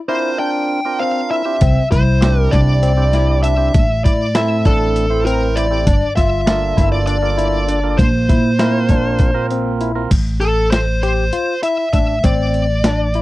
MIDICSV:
0, 0, Header, 1, 6, 480
1, 0, Start_track
1, 0, Tempo, 607903
1, 1268, Time_signature, 7, 3, 24, 8
1, 10438, End_track
2, 0, Start_track
2, 0, Title_t, "Lead electric guitar"
2, 0, Program_c, 0, 29
2, 70, Note_on_c, 0, 72, 89
2, 292, Note_off_c, 0, 72, 0
2, 310, Note_on_c, 0, 79, 95
2, 786, Note_on_c, 0, 77, 89
2, 803, Note_off_c, 0, 79, 0
2, 1030, Note_off_c, 0, 77, 0
2, 1033, Note_on_c, 0, 76, 90
2, 1479, Note_off_c, 0, 76, 0
2, 1514, Note_on_c, 0, 72, 94
2, 1893, Note_off_c, 0, 72, 0
2, 1893, Note_on_c, 0, 70, 94
2, 1985, Note_on_c, 0, 74, 96
2, 2005, Note_off_c, 0, 70, 0
2, 2703, Note_off_c, 0, 74, 0
2, 2706, Note_on_c, 0, 76, 86
2, 3189, Note_off_c, 0, 76, 0
2, 3192, Note_on_c, 0, 74, 87
2, 3437, Note_off_c, 0, 74, 0
2, 3441, Note_on_c, 0, 76, 90
2, 3658, Note_off_c, 0, 76, 0
2, 3680, Note_on_c, 0, 69, 85
2, 4148, Note_off_c, 0, 69, 0
2, 4151, Note_on_c, 0, 70, 79
2, 4387, Note_on_c, 0, 74, 91
2, 4396, Note_off_c, 0, 70, 0
2, 4835, Note_off_c, 0, 74, 0
2, 4862, Note_on_c, 0, 76, 96
2, 5432, Note_off_c, 0, 76, 0
2, 5464, Note_on_c, 0, 74, 83
2, 5570, Note_off_c, 0, 74, 0
2, 5579, Note_on_c, 0, 74, 82
2, 6299, Note_on_c, 0, 72, 80
2, 6323, Note_off_c, 0, 74, 0
2, 7469, Note_off_c, 0, 72, 0
2, 8215, Note_on_c, 0, 69, 78
2, 8454, Note_off_c, 0, 69, 0
2, 8457, Note_on_c, 0, 72, 83
2, 8702, Note_off_c, 0, 72, 0
2, 8712, Note_on_c, 0, 72, 85
2, 9156, Note_off_c, 0, 72, 0
2, 9184, Note_on_c, 0, 76, 91
2, 9412, Note_off_c, 0, 76, 0
2, 9421, Note_on_c, 0, 76, 93
2, 9646, Note_off_c, 0, 76, 0
2, 9674, Note_on_c, 0, 74, 95
2, 10438, Note_off_c, 0, 74, 0
2, 10438, End_track
3, 0, Start_track
3, 0, Title_t, "Tine electric piano"
3, 0, Program_c, 1, 4
3, 73, Note_on_c, 1, 64, 77
3, 235, Note_off_c, 1, 64, 0
3, 313, Note_on_c, 1, 62, 73
3, 639, Note_off_c, 1, 62, 0
3, 791, Note_on_c, 1, 60, 73
3, 954, Note_off_c, 1, 60, 0
3, 1033, Note_on_c, 1, 64, 65
3, 1195, Note_off_c, 1, 64, 0
3, 1274, Note_on_c, 1, 60, 81
3, 1436, Note_off_c, 1, 60, 0
3, 1512, Note_on_c, 1, 64, 69
3, 1838, Note_off_c, 1, 64, 0
3, 1993, Note_on_c, 1, 62, 72
3, 2155, Note_off_c, 1, 62, 0
3, 2233, Note_on_c, 1, 60, 82
3, 2395, Note_off_c, 1, 60, 0
3, 2476, Note_on_c, 1, 64, 77
3, 2637, Note_off_c, 1, 64, 0
3, 2713, Note_on_c, 1, 62, 71
3, 3038, Note_off_c, 1, 62, 0
3, 3197, Note_on_c, 1, 64, 70
3, 3357, Note_off_c, 1, 64, 0
3, 3435, Note_on_c, 1, 64, 84
3, 3596, Note_off_c, 1, 64, 0
3, 3677, Note_on_c, 1, 62, 75
3, 4001, Note_off_c, 1, 62, 0
3, 4157, Note_on_c, 1, 60, 76
3, 4317, Note_off_c, 1, 60, 0
3, 4396, Note_on_c, 1, 64, 72
3, 4557, Note_off_c, 1, 64, 0
3, 4631, Note_on_c, 1, 62, 81
3, 4793, Note_off_c, 1, 62, 0
3, 4871, Note_on_c, 1, 65, 73
3, 5196, Note_off_c, 1, 65, 0
3, 5346, Note_on_c, 1, 64, 78
3, 5509, Note_off_c, 1, 64, 0
3, 5588, Note_on_c, 1, 62, 82
3, 5750, Note_off_c, 1, 62, 0
3, 5825, Note_on_c, 1, 64, 78
3, 5988, Note_off_c, 1, 64, 0
3, 6066, Note_on_c, 1, 62, 68
3, 6393, Note_off_c, 1, 62, 0
3, 6548, Note_on_c, 1, 64, 71
3, 6710, Note_off_c, 1, 64, 0
3, 6782, Note_on_c, 1, 64, 78
3, 6946, Note_off_c, 1, 64, 0
3, 7027, Note_on_c, 1, 62, 75
3, 7353, Note_off_c, 1, 62, 0
3, 7511, Note_on_c, 1, 60, 73
3, 7672, Note_off_c, 1, 60, 0
3, 7747, Note_on_c, 1, 64, 68
3, 7909, Note_off_c, 1, 64, 0
3, 8228, Note_on_c, 1, 69, 65
3, 8554, Note_off_c, 1, 69, 0
3, 8710, Note_on_c, 1, 67, 71
3, 8871, Note_off_c, 1, 67, 0
3, 8945, Note_on_c, 1, 65, 74
3, 9108, Note_off_c, 1, 65, 0
3, 9184, Note_on_c, 1, 64, 67
3, 9348, Note_off_c, 1, 64, 0
3, 9426, Note_on_c, 1, 62, 68
3, 9589, Note_off_c, 1, 62, 0
3, 9664, Note_on_c, 1, 60, 81
3, 9991, Note_off_c, 1, 60, 0
3, 10148, Note_on_c, 1, 62, 78
3, 10310, Note_off_c, 1, 62, 0
3, 10386, Note_on_c, 1, 64, 73
3, 10438, Note_off_c, 1, 64, 0
3, 10438, End_track
4, 0, Start_track
4, 0, Title_t, "Tonewheel organ"
4, 0, Program_c, 2, 16
4, 65, Note_on_c, 2, 60, 73
4, 66, Note_on_c, 2, 62, 68
4, 67, Note_on_c, 2, 70, 79
4, 68, Note_on_c, 2, 65, 67
4, 634, Note_off_c, 2, 60, 0
4, 635, Note_off_c, 2, 62, 0
4, 636, Note_off_c, 2, 65, 0
4, 636, Note_off_c, 2, 70, 0
4, 671, Note_on_c, 2, 65, 61
4, 673, Note_on_c, 2, 62, 63
4, 675, Note_on_c, 2, 60, 66
4, 680, Note_on_c, 2, 70, 78
4, 1124, Note_off_c, 2, 65, 0
4, 1125, Note_off_c, 2, 62, 0
4, 1126, Note_off_c, 2, 60, 0
4, 1128, Note_off_c, 2, 70, 0
4, 1147, Note_on_c, 2, 60, 60
4, 1148, Note_on_c, 2, 67, 72
4, 1150, Note_on_c, 2, 62, 57
4, 1150, Note_on_c, 2, 65, 56
4, 1267, Note_off_c, 2, 60, 0
4, 1268, Note_off_c, 2, 67, 0
4, 1269, Note_off_c, 2, 62, 0
4, 1269, Note_off_c, 2, 65, 0
4, 1743, Note_on_c, 2, 60, 72
4, 1743, Note_on_c, 2, 64, 65
4, 1745, Note_on_c, 2, 67, 79
4, 1747, Note_on_c, 2, 62, 66
4, 2313, Note_off_c, 2, 60, 0
4, 2314, Note_off_c, 2, 64, 0
4, 2315, Note_off_c, 2, 62, 0
4, 2315, Note_off_c, 2, 67, 0
4, 2346, Note_on_c, 2, 62, 66
4, 2347, Note_on_c, 2, 60, 70
4, 2349, Note_on_c, 2, 64, 65
4, 2349, Note_on_c, 2, 67, 83
4, 2801, Note_off_c, 2, 60, 0
4, 2801, Note_off_c, 2, 62, 0
4, 2803, Note_off_c, 2, 64, 0
4, 2803, Note_off_c, 2, 67, 0
4, 2818, Note_on_c, 2, 60, 66
4, 2821, Note_on_c, 2, 64, 63
4, 2821, Note_on_c, 2, 67, 75
4, 2823, Note_on_c, 2, 62, 59
4, 2943, Note_off_c, 2, 60, 0
4, 2944, Note_off_c, 2, 64, 0
4, 2944, Note_off_c, 2, 67, 0
4, 2945, Note_off_c, 2, 62, 0
4, 3432, Note_on_c, 2, 64, 70
4, 3433, Note_on_c, 2, 57, 72
4, 3433, Note_on_c, 2, 69, 80
4, 3434, Note_on_c, 2, 60, 65
4, 3997, Note_off_c, 2, 64, 0
4, 3998, Note_off_c, 2, 57, 0
4, 3998, Note_off_c, 2, 60, 0
4, 3998, Note_off_c, 2, 69, 0
4, 4027, Note_on_c, 2, 52, 76
4, 4027, Note_on_c, 2, 60, 65
4, 4029, Note_on_c, 2, 64, 65
4, 4030, Note_on_c, 2, 72, 81
4, 4481, Note_off_c, 2, 52, 0
4, 4481, Note_off_c, 2, 60, 0
4, 4482, Note_off_c, 2, 64, 0
4, 4482, Note_off_c, 2, 72, 0
4, 4506, Note_on_c, 2, 60, 60
4, 4507, Note_on_c, 2, 64, 63
4, 4510, Note_on_c, 2, 57, 68
4, 4512, Note_on_c, 2, 67, 75
4, 4626, Note_off_c, 2, 60, 0
4, 4627, Note_off_c, 2, 64, 0
4, 4628, Note_off_c, 2, 57, 0
4, 4629, Note_off_c, 2, 67, 0
4, 5105, Note_on_c, 2, 62, 64
4, 5105, Note_on_c, 2, 69, 81
4, 5106, Note_on_c, 2, 58, 70
4, 5107, Note_on_c, 2, 65, 66
4, 5673, Note_off_c, 2, 58, 0
4, 5673, Note_off_c, 2, 62, 0
4, 5673, Note_off_c, 2, 69, 0
4, 5674, Note_off_c, 2, 65, 0
4, 5704, Note_on_c, 2, 65, 67
4, 5705, Note_on_c, 2, 58, 75
4, 5705, Note_on_c, 2, 62, 68
4, 5705, Note_on_c, 2, 69, 86
4, 6158, Note_off_c, 2, 65, 0
4, 6159, Note_off_c, 2, 58, 0
4, 6159, Note_off_c, 2, 62, 0
4, 6159, Note_off_c, 2, 69, 0
4, 6185, Note_on_c, 2, 58, 68
4, 6187, Note_on_c, 2, 62, 60
4, 6188, Note_on_c, 2, 69, 70
4, 6189, Note_on_c, 2, 65, 59
4, 6305, Note_off_c, 2, 58, 0
4, 6306, Note_off_c, 2, 62, 0
4, 6306, Note_off_c, 2, 69, 0
4, 6307, Note_off_c, 2, 65, 0
4, 6780, Note_on_c, 2, 60, 71
4, 6782, Note_on_c, 2, 58, 73
4, 6782, Note_on_c, 2, 65, 66
4, 6782, Note_on_c, 2, 70, 81
4, 7349, Note_off_c, 2, 60, 0
4, 7350, Note_off_c, 2, 58, 0
4, 7351, Note_off_c, 2, 65, 0
4, 7351, Note_off_c, 2, 70, 0
4, 7377, Note_on_c, 2, 60, 80
4, 7377, Note_on_c, 2, 70, 101
4, 7378, Note_on_c, 2, 58, 90
4, 7381, Note_on_c, 2, 65, 80
4, 7834, Note_off_c, 2, 70, 0
4, 7835, Note_off_c, 2, 58, 0
4, 7835, Note_off_c, 2, 60, 0
4, 7836, Note_off_c, 2, 65, 0
4, 7859, Note_on_c, 2, 58, 80
4, 7860, Note_on_c, 2, 70, 82
4, 7861, Note_on_c, 2, 65, 71
4, 7862, Note_on_c, 2, 60, 69
4, 7981, Note_off_c, 2, 58, 0
4, 7982, Note_off_c, 2, 65, 0
4, 7982, Note_off_c, 2, 70, 0
4, 7983, Note_off_c, 2, 60, 0
4, 10438, End_track
5, 0, Start_track
5, 0, Title_t, "Upright bass"
5, 0, Program_c, 3, 32
5, 1276, Note_on_c, 3, 36, 86
5, 1381, Note_off_c, 3, 36, 0
5, 1515, Note_on_c, 3, 36, 90
5, 1960, Note_off_c, 3, 36, 0
5, 1998, Note_on_c, 3, 36, 79
5, 2921, Note_off_c, 3, 36, 0
5, 2960, Note_on_c, 3, 33, 92
5, 3171, Note_off_c, 3, 33, 0
5, 3202, Note_on_c, 3, 45, 91
5, 3643, Note_off_c, 3, 45, 0
5, 3676, Note_on_c, 3, 33, 80
5, 4599, Note_off_c, 3, 33, 0
5, 4635, Note_on_c, 3, 31, 93
5, 4739, Note_off_c, 3, 31, 0
5, 4876, Note_on_c, 3, 31, 91
5, 5319, Note_off_c, 3, 31, 0
5, 5352, Note_on_c, 3, 31, 82
5, 6276, Note_off_c, 3, 31, 0
5, 6307, Note_on_c, 3, 34, 102
5, 6523, Note_off_c, 3, 34, 0
5, 6549, Note_on_c, 3, 46, 93
5, 6994, Note_off_c, 3, 46, 0
5, 7024, Note_on_c, 3, 34, 87
5, 7952, Note_off_c, 3, 34, 0
5, 7988, Note_on_c, 3, 33, 82
5, 8914, Note_off_c, 3, 33, 0
5, 9426, Note_on_c, 3, 33, 71
5, 9641, Note_off_c, 3, 33, 0
5, 9668, Note_on_c, 3, 33, 91
5, 10438, Note_off_c, 3, 33, 0
5, 10438, End_track
6, 0, Start_track
6, 0, Title_t, "Drums"
6, 1270, Note_on_c, 9, 42, 78
6, 1275, Note_on_c, 9, 36, 97
6, 1349, Note_off_c, 9, 42, 0
6, 1354, Note_off_c, 9, 36, 0
6, 1516, Note_on_c, 9, 36, 67
6, 1517, Note_on_c, 9, 38, 31
6, 1517, Note_on_c, 9, 42, 53
6, 1595, Note_off_c, 9, 36, 0
6, 1595, Note_off_c, 9, 38, 0
6, 1595, Note_off_c, 9, 42, 0
6, 1755, Note_on_c, 9, 38, 101
6, 1755, Note_on_c, 9, 42, 73
6, 1834, Note_off_c, 9, 38, 0
6, 1834, Note_off_c, 9, 42, 0
6, 1994, Note_on_c, 9, 38, 32
6, 1994, Note_on_c, 9, 42, 55
6, 1996, Note_on_c, 9, 36, 71
6, 2073, Note_off_c, 9, 38, 0
6, 2073, Note_off_c, 9, 42, 0
6, 2075, Note_off_c, 9, 36, 0
6, 2233, Note_on_c, 9, 42, 70
6, 2312, Note_off_c, 9, 42, 0
6, 2473, Note_on_c, 9, 38, 33
6, 2473, Note_on_c, 9, 42, 54
6, 2552, Note_off_c, 9, 38, 0
6, 2552, Note_off_c, 9, 42, 0
6, 2714, Note_on_c, 9, 42, 60
6, 2792, Note_off_c, 9, 42, 0
6, 2955, Note_on_c, 9, 42, 78
6, 2957, Note_on_c, 9, 36, 106
6, 3034, Note_off_c, 9, 42, 0
6, 3036, Note_off_c, 9, 36, 0
6, 3199, Note_on_c, 9, 36, 65
6, 3202, Note_on_c, 9, 42, 58
6, 3278, Note_off_c, 9, 36, 0
6, 3281, Note_off_c, 9, 42, 0
6, 3434, Note_on_c, 9, 38, 104
6, 3434, Note_on_c, 9, 42, 81
6, 3513, Note_off_c, 9, 38, 0
6, 3513, Note_off_c, 9, 42, 0
6, 3673, Note_on_c, 9, 38, 33
6, 3673, Note_on_c, 9, 42, 59
6, 3676, Note_on_c, 9, 36, 75
6, 3752, Note_off_c, 9, 38, 0
6, 3752, Note_off_c, 9, 42, 0
6, 3754, Note_off_c, 9, 36, 0
6, 3916, Note_on_c, 9, 42, 76
6, 3995, Note_off_c, 9, 42, 0
6, 4161, Note_on_c, 9, 42, 62
6, 4240, Note_off_c, 9, 42, 0
6, 4397, Note_on_c, 9, 42, 58
6, 4476, Note_off_c, 9, 42, 0
6, 4634, Note_on_c, 9, 36, 104
6, 4635, Note_on_c, 9, 42, 81
6, 4712, Note_off_c, 9, 36, 0
6, 4714, Note_off_c, 9, 42, 0
6, 4872, Note_on_c, 9, 36, 65
6, 4874, Note_on_c, 9, 38, 33
6, 4874, Note_on_c, 9, 42, 59
6, 4951, Note_off_c, 9, 36, 0
6, 4953, Note_off_c, 9, 38, 0
6, 4953, Note_off_c, 9, 42, 0
6, 5111, Note_on_c, 9, 38, 105
6, 5111, Note_on_c, 9, 42, 81
6, 5190, Note_off_c, 9, 38, 0
6, 5190, Note_off_c, 9, 42, 0
6, 5350, Note_on_c, 9, 36, 75
6, 5353, Note_on_c, 9, 38, 34
6, 5353, Note_on_c, 9, 42, 55
6, 5429, Note_off_c, 9, 36, 0
6, 5432, Note_off_c, 9, 38, 0
6, 5432, Note_off_c, 9, 42, 0
6, 5585, Note_on_c, 9, 42, 77
6, 5664, Note_off_c, 9, 42, 0
6, 5832, Note_on_c, 9, 42, 56
6, 5911, Note_off_c, 9, 42, 0
6, 6068, Note_on_c, 9, 42, 60
6, 6147, Note_off_c, 9, 42, 0
6, 6306, Note_on_c, 9, 36, 106
6, 6309, Note_on_c, 9, 42, 75
6, 6385, Note_off_c, 9, 36, 0
6, 6388, Note_off_c, 9, 42, 0
6, 6545, Note_on_c, 9, 36, 68
6, 6549, Note_on_c, 9, 42, 55
6, 6624, Note_off_c, 9, 36, 0
6, 6628, Note_off_c, 9, 42, 0
6, 6786, Note_on_c, 9, 38, 101
6, 6786, Note_on_c, 9, 42, 73
6, 6864, Note_off_c, 9, 38, 0
6, 6864, Note_off_c, 9, 42, 0
6, 7017, Note_on_c, 9, 42, 55
6, 7020, Note_on_c, 9, 36, 76
6, 7096, Note_off_c, 9, 42, 0
6, 7099, Note_off_c, 9, 36, 0
6, 7253, Note_on_c, 9, 42, 72
6, 7261, Note_on_c, 9, 36, 102
6, 7332, Note_off_c, 9, 42, 0
6, 7340, Note_off_c, 9, 36, 0
6, 7505, Note_on_c, 9, 42, 59
6, 7584, Note_off_c, 9, 42, 0
6, 7743, Note_on_c, 9, 42, 59
6, 7822, Note_off_c, 9, 42, 0
6, 7983, Note_on_c, 9, 42, 81
6, 7983, Note_on_c, 9, 49, 91
6, 7984, Note_on_c, 9, 36, 101
6, 8062, Note_off_c, 9, 42, 0
6, 8062, Note_off_c, 9, 49, 0
6, 8063, Note_off_c, 9, 36, 0
6, 8224, Note_on_c, 9, 42, 55
6, 8303, Note_off_c, 9, 42, 0
6, 8468, Note_on_c, 9, 38, 101
6, 8468, Note_on_c, 9, 42, 78
6, 8547, Note_off_c, 9, 38, 0
6, 8547, Note_off_c, 9, 42, 0
6, 8710, Note_on_c, 9, 42, 54
6, 8789, Note_off_c, 9, 42, 0
6, 8943, Note_on_c, 9, 42, 74
6, 9022, Note_off_c, 9, 42, 0
6, 9183, Note_on_c, 9, 42, 55
6, 9262, Note_off_c, 9, 42, 0
6, 9423, Note_on_c, 9, 36, 62
6, 9423, Note_on_c, 9, 42, 55
6, 9502, Note_off_c, 9, 36, 0
6, 9502, Note_off_c, 9, 42, 0
6, 9662, Note_on_c, 9, 42, 75
6, 9664, Note_on_c, 9, 36, 97
6, 9741, Note_off_c, 9, 42, 0
6, 9743, Note_off_c, 9, 36, 0
6, 9902, Note_on_c, 9, 42, 55
6, 9981, Note_off_c, 9, 42, 0
6, 10139, Note_on_c, 9, 38, 96
6, 10139, Note_on_c, 9, 42, 69
6, 10218, Note_off_c, 9, 38, 0
6, 10218, Note_off_c, 9, 42, 0
6, 10375, Note_on_c, 9, 42, 52
6, 10438, Note_off_c, 9, 42, 0
6, 10438, End_track
0, 0, End_of_file